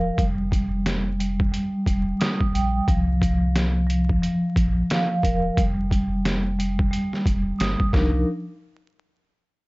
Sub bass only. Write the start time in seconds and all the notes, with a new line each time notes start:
Already playing: D#1
0.18 F1
1.87 D#1
2.55 A#1
2.88 C2
4.56 A#1
5.24 D#1
5.58 F1
7.26 D#1
7.60 G1
7.94 C2